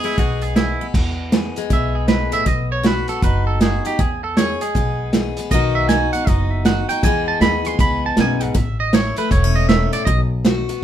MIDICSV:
0, 0, Header, 1, 6, 480
1, 0, Start_track
1, 0, Key_signature, 4, "major"
1, 0, Tempo, 380469
1, 1192, Time_signature, 4, 2, 24, 8
1, 13673, End_track
2, 0, Start_track
2, 0, Title_t, "Clean electric guitar"
2, 0, Program_c, 0, 27
2, 62, Note_on_c, 0, 64, 85
2, 231, Note_off_c, 0, 64, 0
2, 240, Note_on_c, 0, 66, 61
2, 532, Note_off_c, 0, 66, 0
2, 532, Note_on_c, 0, 68, 72
2, 702, Note_off_c, 0, 68, 0
2, 707, Note_on_c, 0, 64, 80
2, 1088, Note_off_c, 0, 64, 0
2, 2183, Note_on_c, 0, 76, 76
2, 2460, Note_off_c, 0, 76, 0
2, 2461, Note_on_c, 0, 68, 48
2, 2624, Note_off_c, 0, 68, 0
2, 2629, Note_on_c, 0, 71, 77
2, 2923, Note_off_c, 0, 71, 0
2, 2944, Note_on_c, 0, 76, 111
2, 3114, Note_off_c, 0, 76, 0
2, 3121, Note_on_c, 0, 75, 65
2, 3409, Note_off_c, 0, 75, 0
2, 3430, Note_on_c, 0, 73, 89
2, 3597, Note_off_c, 0, 73, 0
2, 3613, Note_on_c, 0, 71, 76
2, 3893, Note_off_c, 0, 71, 0
2, 3898, Note_on_c, 0, 69, 88
2, 4071, Note_off_c, 0, 69, 0
2, 4086, Note_on_c, 0, 71, 82
2, 4371, Note_off_c, 0, 71, 0
2, 4376, Note_on_c, 0, 69, 82
2, 4550, Note_off_c, 0, 69, 0
2, 4565, Note_on_c, 0, 68, 70
2, 4851, Note_off_c, 0, 68, 0
2, 4877, Note_on_c, 0, 67, 91
2, 5041, Note_off_c, 0, 67, 0
2, 5049, Note_on_c, 0, 68, 66
2, 5333, Note_off_c, 0, 68, 0
2, 5346, Note_on_c, 0, 69, 84
2, 5516, Note_off_c, 0, 69, 0
2, 5516, Note_on_c, 0, 73, 93
2, 5807, Note_off_c, 0, 73, 0
2, 5824, Note_on_c, 0, 68, 83
2, 6434, Note_off_c, 0, 68, 0
2, 6955, Note_on_c, 0, 75, 83
2, 7246, Note_off_c, 0, 75, 0
2, 7257, Note_on_c, 0, 76, 89
2, 7422, Note_off_c, 0, 76, 0
2, 7427, Note_on_c, 0, 80, 93
2, 7722, Note_off_c, 0, 80, 0
2, 7732, Note_on_c, 0, 78, 95
2, 7927, Note_off_c, 0, 78, 0
2, 7927, Note_on_c, 0, 75, 72
2, 8220, Note_off_c, 0, 75, 0
2, 8220, Note_on_c, 0, 76, 87
2, 8392, Note_off_c, 0, 76, 0
2, 8397, Note_on_c, 0, 78, 77
2, 8687, Note_off_c, 0, 78, 0
2, 8692, Note_on_c, 0, 79, 106
2, 8868, Note_off_c, 0, 79, 0
2, 8884, Note_on_c, 0, 80, 73
2, 9170, Note_off_c, 0, 80, 0
2, 9183, Note_on_c, 0, 81, 100
2, 9351, Note_off_c, 0, 81, 0
2, 9356, Note_on_c, 0, 83, 86
2, 9670, Note_off_c, 0, 83, 0
2, 9670, Note_on_c, 0, 84, 105
2, 9837, Note_off_c, 0, 84, 0
2, 9846, Note_on_c, 0, 83, 89
2, 10131, Note_off_c, 0, 83, 0
2, 10169, Note_on_c, 0, 81, 91
2, 10326, Note_off_c, 0, 81, 0
2, 10352, Note_on_c, 0, 80, 84
2, 10630, Note_off_c, 0, 80, 0
2, 10630, Note_on_c, 0, 78, 105
2, 10797, Note_off_c, 0, 78, 0
2, 10797, Note_on_c, 0, 76, 74
2, 11085, Note_off_c, 0, 76, 0
2, 11102, Note_on_c, 0, 75, 91
2, 11271, Note_off_c, 0, 75, 0
2, 11286, Note_on_c, 0, 73, 79
2, 11570, Note_off_c, 0, 73, 0
2, 11583, Note_on_c, 0, 71, 100
2, 11752, Note_off_c, 0, 71, 0
2, 11759, Note_on_c, 0, 73, 82
2, 12045, Note_off_c, 0, 73, 0
2, 12056, Note_on_c, 0, 75, 90
2, 12216, Note_off_c, 0, 75, 0
2, 12222, Note_on_c, 0, 76, 97
2, 12516, Note_off_c, 0, 76, 0
2, 12529, Note_on_c, 0, 74, 100
2, 12678, Note_off_c, 0, 74, 0
2, 12683, Note_on_c, 0, 75, 84
2, 12870, Note_off_c, 0, 75, 0
2, 13673, End_track
3, 0, Start_track
3, 0, Title_t, "Fiddle"
3, 0, Program_c, 1, 110
3, 0, Note_on_c, 1, 68, 83
3, 709, Note_off_c, 1, 68, 0
3, 13673, End_track
4, 0, Start_track
4, 0, Title_t, "Steel-string acoustic guitar"
4, 0, Program_c, 2, 25
4, 0, Note_on_c, 2, 52, 56
4, 0, Note_on_c, 2, 59, 53
4, 49, Note_on_c, 2, 56, 53
4, 194, Note_off_c, 2, 52, 0
4, 224, Note_off_c, 2, 59, 0
4, 225, Note_on_c, 2, 47, 63
4, 240, Note_on_c, 2, 59, 61
4, 673, Note_off_c, 2, 47, 0
4, 711, Note_on_c, 2, 52, 58
4, 718, Note_on_c, 2, 68, 58
4, 1009, Note_off_c, 2, 59, 0
4, 1024, Note_on_c, 2, 59, 64
4, 1156, Note_off_c, 2, 52, 0
4, 1170, Note_off_c, 2, 56, 0
4, 1174, Note_off_c, 2, 68, 0
4, 1199, Note_on_c, 2, 40, 74
4, 1640, Note_off_c, 2, 40, 0
4, 1668, Note_on_c, 2, 52, 62
4, 1684, Note_on_c, 2, 68, 63
4, 1986, Note_on_c, 2, 56, 55
4, 2115, Note_off_c, 2, 52, 0
4, 2135, Note_off_c, 2, 59, 0
4, 2147, Note_on_c, 2, 47, 64
4, 2156, Note_on_c, 2, 59, 50
4, 2596, Note_off_c, 2, 47, 0
4, 2627, Note_on_c, 2, 44, 63
4, 2928, Note_on_c, 2, 45, 66
4, 2931, Note_off_c, 2, 44, 0
4, 3098, Note_off_c, 2, 45, 0
4, 3098, Note_off_c, 2, 68, 0
4, 3099, Note_off_c, 2, 56, 0
4, 3103, Note_on_c, 2, 47, 76
4, 3553, Note_off_c, 2, 47, 0
4, 3576, Note_on_c, 2, 51, 60
4, 3585, Note_on_c, 2, 66, 67
4, 3899, Note_off_c, 2, 59, 0
4, 3899, Note_on_c, 2, 59, 53
4, 4029, Note_off_c, 2, 51, 0
4, 4080, Note_on_c, 2, 42, 64
4, 4085, Note_on_c, 2, 63, 59
4, 4521, Note_off_c, 2, 42, 0
4, 4550, Note_off_c, 2, 66, 0
4, 4553, Note_on_c, 2, 51, 67
4, 4569, Note_on_c, 2, 66, 60
4, 4848, Note_off_c, 2, 63, 0
4, 4864, Note_on_c, 2, 63, 59
4, 4998, Note_off_c, 2, 51, 0
4, 5018, Note_off_c, 2, 63, 0
4, 5021, Note_off_c, 2, 66, 0
4, 5032, Note_on_c, 2, 40, 87
4, 5477, Note_off_c, 2, 40, 0
4, 5529, Note_on_c, 2, 52, 64
4, 5538, Note_on_c, 2, 68, 74
4, 5830, Note_off_c, 2, 59, 0
4, 5836, Note_on_c, 2, 56, 55
4, 5966, Note_off_c, 2, 52, 0
4, 6008, Note_on_c, 2, 47, 65
4, 6018, Note_on_c, 2, 59, 59
4, 6446, Note_off_c, 2, 47, 0
4, 6483, Note_off_c, 2, 68, 0
4, 6487, Note_on_c, 2, 52, 62
4, 6498, Note_on_c, 2, 68, 65
4, 6791, Note_off_c, 2, 59, 0
4, 6796, Note_on_c, 2, 59, 58
4, 6925, Note_off_c, 2, 52, 0
4, 6944, Note_off_c, 2, 56, 0
4, 6945, Note_off_c, 2, 68, 0
4, 6956, Note_on_c, 2, 47, 84
4, 6965, Note_on_c, 2, 51, 62
4, 6974, Note_off_c, 2, 59, 0
4, 6974, Note_on_c, 2, 59, 72
4, 6987, Note_on_c, 2, 63, 71
4, 6993, Note_on_c, 2, 66, 71
4, 7400, Note_off_c, 2, 47, 0
4, 7431, Note_off_c, 2, 51, 0
4, 7433, Note_off_c, 2, 66, 0
4, 7445, Note_on_c, 2, 51, 71
4, 7453, Note_on_c, 2, 66, 65
4, 7752, Note_off_c, 2, 59, 0
4, 7757, Note_on_c, 2, 59, 52
4, 7885, Note_off_c, 2, 51, 0
4, 7909, Note_off_c, 2, 63, 0
4, 7924, Note_on_c, 2, 63, 62
4, 8388, Note_off_c, 2, 66, 0
4, 8395, Note_on_c, 2, 51, 61
4, 8403, Note_on_c, 2, 66, 65
4, 8695, Note_off_c, 2, 63, 0
4, 8710, Note_on_c, 2, 63, 62
4, 8839, Note_off_c, 2, 51, 0
4, 8857, Note_off_c, 2, 66, 0
4, 8861, Note_off_c, 2, 63, 0
4, 8864, Note_off_c, 2, 59, 0
4, 8874, Note_on_c, 2, 40, 79
4, 8880, Note_on_c, 2, 52, 69
4, 8895, Note_on_c, 2, 56, 68
4, 8903, Note_on_c, 2, 59, 73
4, 8910, Note_on_c, 2, 68, 75
4, 9318, Note_off_c, 2, 40, 0
4, 9348, Note_off_c, 2, 68, 0
4, 9363, Note_on_c, 2, 68, 70
4, 9655, Note_off_c, 2, 56, 0
4, 9670, Note_on_c, 2, 56, 55
4, 9829, Note_off_c, 2, 59, 0
4, 9834, Note_on_c, 2, 47, 57
4, 9844, Note_on_c, 2, 59, 62
4, 10277, Note_off_c, 2, 47, 0
4, 10314, Note_on_c, 2, 42, 63
4, 10352, Note_off_c, 2, 52, 0
4, 10602, Note_off_c, 2, 42, 0
4, 10607, Note_on_c, 2, 44, 60
4, 10776, Note_off_c, 2, 68, 0
4, 10779, Note_off_c, 2, 56, 0
4, 10780, Note_on_c, 2, 45, 82
4, 10790, Note_off_c, 2, 44, 0
4, 10798, Note_off_c, 2, 59, 0
4, 11230, Note_off_c, 2, 45, 0
4, 11274, Note_on_c, 2, 52, 68
4, 11285, Note_on_c, 2, 64, 71
4, 11577, Note_on_c, 2, 57, 61
4, 11716, Note_off_c, 2, 52, 0
4, 11758, Note_on_c, 2, 59, 51
4, 11907, Note_off_c, 2, 59, 0
4, 11907, Note_on_c, 2, 61, 52
4, 12230, Note_on_c, 2, 44, 62
4, 12526, Note_on_c, 2, 45, 68
4, 12529, Note_off_c, 2, 44, 0
4, 12690, Note_off_c, 2, 57, 0
4, 12701, Note_off_c, 2, 45, 0
4, 12706, Note_on_c, 2, 47, 85
4, 12712, Note_off_c, 2, 61, 0
4, 12715, Note_off_c, 2, 64, 0
4, 13151, Note_off_c, 2, 47, 0
4, 13182, Note_on_c, 2, 51, 61
4, 13194, Note_on_c, 2, 66, 73
4, 13490, Note_on_c, 2, 59, 57
4, 13628, Note_off_c, 2, 51, 0
4, 13673, Note_off_c, 2, 59, 0
4, 13673, Note_off_c, 2, 66, 0
4, 13673, End_track
5, 0, Start_track
5, 0, Title_t, "Upright bass"
5, 0, Program_c, 3, 32
5, 224, Note_on_c, 3, 35, 78
5, 926, Note_off_c, 3, 35, 0
5, 1185, Note_on_c, 3, 40, 83
5, 1886, Note_off_c, 3, 40, 0
5, 2145, Note_on_c, 3, 35, 77
5, 2847, Note_off_c, 3, 35, 0
5, 3101, Note_on_c, 3, 35, 80
5, 3804, Note_off_c, 3, 35, 0
5, 4067, Note_on_c, 3, 30, 83
5, 4768, Note_off_c, 3, 30, 0
5, 5032, Note_on_c, 3, 40, 85
5, 5731, Note_off_c, 3, 40, 0
5, 5991, Note_on_c, 3, 35, 81
5, 6691, Note_off_c, 3, 35, 0
5, 6954, Note_on_c, 3, 35, 90
5, 7652, Note_off_c, 3, 35, 0
5, 7912, Note_on_c, 3, 30, 83
5, 8611, Note_off_c, 3, 30, 0
5, 8865, Note_on_c, 3, 40, 80
5, 9218, Note_off_c, 3, 40, 0
5, 9342, Note_on_c, 3, 39, 82
5, 9755, Note_off_c, 3, 39, 0
5, 9825, Note_on_c, 3, 37, 83
5, 10237, Note_off_c, 3, 37, 0
5, 10302, Note_on_c, 3, 35, 81
5, 10714, Note_off_c, 3, 35, 0
5, 10785, Note_on_c, 3, 33, 96
5, 11485, Note_off_c, 3, 33, 0
5, 11740, Note_on_c, 3, 28, 92
5, 12441, Note_off_c, 3, 28, 0
5, 12696, Note_on_c, 3, 35, 95
5, 13397, Note_off_c, 3, 35, 0
5, 13673, End_track
6, 0, Start_track
6, 0, Title_t, "Drums"
6, 44, Note_on_c, 9, 42, 50
6, 170, Note_off_c, 9, 42, 0
6, 224, Note_on_c, 9, 42, 49
6, 226, Note_on_c, 9, 36, 99
6, 350, Note_off_c, 9, 42, 0
6, 352, Note_off_c, 9, 36, 0
6, 523, Note_on_c, 9, 42, 57
6, 649, Note_off_c, 9, 42, 0
6, 704, Note_on_c, 9, 38, 106
6, 704, Note_on_c, 9, 42, 52
6, 830, Note_off_c, 9, 38, 0
6, 830, Note_off_c, 9, 42, 0
6, 1188, Note_on_c, 9, 36, 107
6, 1189, Note_on_c, 9, 49, 93
6, 1314, Note_off_c, 9, 36, 0
6, 1315, Note_off_c, 9, 49, 0
6, 1668, Note_on_c, 9, 38, 104
6, 1668, Note_on_c, 9, 42, 62
6, 1794, Note_off_c, 9, 38, 0
6, 1794, Note_off_c, 9, 42, 0
6, 1971, Note_on_c, 9, 42, 63
6, 2097, Note_off_c, 9, 42, 0
6, 2149, Note_on_c, 9, 36, 99
6, 2149, Note_on_c, 9, 42, 56
6, 2275, Note_off_c, 9, 36, 0
6, 2275, Note_off_c, 9, 42, 0
6, 2623, Note_on_c, 9, 38, 106
6, 2623, Note_on_c, 9, 42, 61
6, 2749, Note_off_c, 9, 38, 0
6, 2749, Note_off_c, 9, 42, 0
6, 2925, Note_on_c, 9, 42, 68
6, 3051, Note_off_c, 9, 42, 0
6, 3104, Note_on_c, 9, 42, 54
6, 3107, Note_on_c, 9, 36, 98
6, 3231, Note_off_c, 9, 42, 0
6, 3233, Note_off_c, 9, 36, 0
6, 3588, Note_on_c, 9, 38, 108
6, 3588, Note_on_c, 9, 42, 56
6, 3714, Note_off_c, 9, 38, 0
6, 3714, Note_off_c, 9, 42, 0
6, 3882, Note_on_c, 9, 42, 60
6, 4009, Note_off_c, 9, 42, 0
6, 4065, Note_on_c, 9, 42, 52
6, 4068, Note_on_c, 9, 36, 108
6, 4191, Note_off_c, 9, 42, 0
6, 4194, Note_off_c, 9, 36, 0
6, 4549, Note_on_c, 9, 38, 113
6, 4549, Note_on_c, 9, 42, 61
6, 4675, Note_off_c, 9, 38, 0
6, 4675, Note_off_c, 9, 42, 0
6, 4855, Note_on_c, 9, 42, 58
6, 4981, Note_off_c, 9, 42, 0
6, 5033, Note_on_c, 9, 36, 101
6, 5033, Note_on_c, 9, 42, 51
6, 5159, Note_off_c, 9, 42, 0
6, 5160, Note_off_c, 9, 36, 0
6, 5511, Note_on_c, 9, 38, 109
6, 5511, Note_on_c, 9, 42, 61
6, 5637, Note_off_c, 9, 38, 0
6, 5637, Note_off_c, 9, 42, 0
6, 5816, Note_on_c, 9, 42, 63
6, 5942, Note_off_c, 9, 42, 0
6, 5990, Note_on_c, 9, 42, 59
6, 5995, Note_on_c, 9, 36, 97
6, 6116, Note_off_c, 9, 42, 0
6, 6121, Note_off_c, 9, 36, 0
6, 6471, Note_on_c, 9, 38, 103
6, 6471, Note_on_c, 9, 42, 63
6, 6597, Note_off_c, 9, 38, 0
6, 6597, Note_off_c, 9, 42, 0
6, 6771, Note_on_c, 9, 42, 73
6, 6897, Note_off_c, 9, 42, 0
6, 6949, Note_on_c, 9, 42, 59
6, 6952, Note_on_c, 9, 36, 100
6, 7075, Note_off_c, 9, 42, 0
6, 7078, Note_off_c, 9, 36, 0
6, 7428, Note_on_c, 9, 38, 96
6, 7428, Note_on_c, 9, 42, 61
6, 7554, Note_off_c, 9, 38, 0
6, 7554, Note_off_c, 9, 42, 0
6, 7734, Note_on_c, 9, 42, 62
6, 7860, Note_off_c, 9, 42, 0
6, 7910, Note_on_c, 9, 42, 61
6, 7912, Note_on_c, 9, 36, 118
6, 8036, Note_off_c, 9, 42, 0
6, 8038, Note_off_c, 9, 36, 0
6, 8389, Note_on_c, 9, 38, 106
6, 8389, Note_on_c, 9, 42, 54
6, 8515, Note_off_c, 9, 38, 0
6, 8515, Note_off_c, 9, 42, 0
6, 8693, Note_on_c, 9, 42, 65
6, 8819, Note_off_c, 9, 42, 0
6, 8870, Note_on_c, 9, 36, 107
6, 8870, Note_on_c, 9, 42, 54
6, 8996, Note_off_c, 9, 42, 0
6, 8997, Note_off_c, 9, 36, 0
6, 9349, Note_on_c, 9, 38, 113
6, 9349, Note_on_c, 9, 42, 56
6, 9476, Note_off_c, 9, 38, 0
6, 9476, Note_off_c, 9, 42, 0
6, 9648, Note_on_c, 9, 42, 61
6, 9775, Note_off_c, 9, 42, 0
6, 9824, Note_on_c, 9, 42, 63
6, 9826, Note_on_c, 9, 36, 113
6, 9951, Note_off_c, 9, 42, 0
6, 9953, Note_off_c, 9, 36, 0
6, 10305, Note_on_c, 9, 38, 115
6, 10305, Note_on_c, 9, 42, 64
6, 10431, Note_off_c, 9, 38, 0
6, 10431, Note_off_c, 9, 42, 0
6, 10604, Note_on_c, 9, 42, 71
6, 10730, Note_off_c, 9, 42, 0
6, 10783, Note_on_c, 9, 42, 64
6, 10785, Note_on_c, 9, 36, 101
6, 10909, Note_off_c, 9, 42, 0
6, 10911, Note_off_c, 9, 36, 0
6, 11265, Note_on_c, 9, 38, 108
6, 11265, Note_on_c, 9, 42, 60
6, 11391, Note_off_c, 9, 38, 0
6, 11391, Note_off_c, 9, 42, 0
6, 11561, Note_on_c, 9, 42, 58
6, 11687, Note_off_c, 9, 42, 0
6, 11745, Note_on_c, 9, 36, 118
6, 11747, Note_on_c, 9, 42, 67
6, 11871, Note_off_c, 9, 36, 0
6, 11873, Note_off_c, 9, 42, 0
6, 12224, Note_on_c, 9, 38, 109
6, 12224, Note_on_c, 9, 42, 61
6, 12350, Note_off_c, 9, 38, 0
6, 12350, Note_off_c, 9, 42, 0
6, 12524, Note_on_c, 9, 42, 69
6, 12651, Note_off_c, 9, 42, 0
6, 12699, Note_on_c, 9, 42, 54
6, 12701, Note_on_c, 9, 36, 106
6, 12825, Note_off_c, 9, 42, 0
6, 12827, Note_off_c, 9, 36, 0
6, 13179, Note_on_c, 9, 38, 103
6, 13179, Note_on_c, 9, 42, 60
6, 13305, Note_off_c, 9, 38, 0
6, 13305, Note_off_c, 9, 42, 0
6, 13485, Note_on_c, 9, 42, 54
6, 13611, Note_off_c, 9, 42, 0
6, 13673, End_track
0, 0, End_of_file